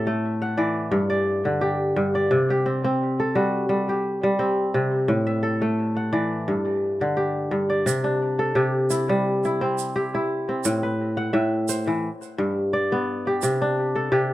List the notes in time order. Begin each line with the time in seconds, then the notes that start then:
Already playing: A2 C4 G4 A4 E5
0.07 A3
0.42 F#5
0.57 E3 D5
0.91 G2
1.10 D5
1.45 D3
1.61 G4
1.96 G2
2.15 D5
2.31 C3
2.50 G4
2.66 C4
2.84 C4
3.20 A4
3.35 G3 F#4
3.69 G3
3.89 G4
4.23 G3
4.39 C4
4.74 C3
5.08 A2
5.27 E5
5.43 A4
5.62 A3
5.97 F#5
6.13 E3 D5
6.48 G2
7.01 D3
7.17 G4
7.51 G2
7.70 D5
7.86 C3, shaker
8.04 D4
8.39 A4
8.55 C3 G4
8.90 E4, shaker
9.09 G3
9.44 E4, shaker
9.61 C4
9.78 shaker
9.96 G4
10.15 E4
10.49 C4
10.64 A2, shaker
10.83 B4
11.17 F#5
11.33 A2 E5
11.68 C5, shaker
11.87 E3
12.22 shaker
12.38 G2
12.73 D5
12.92 B3
13.27 G4
13.42 C3, shaker
13.62 D4
13.96 A4
14.12 C3 G4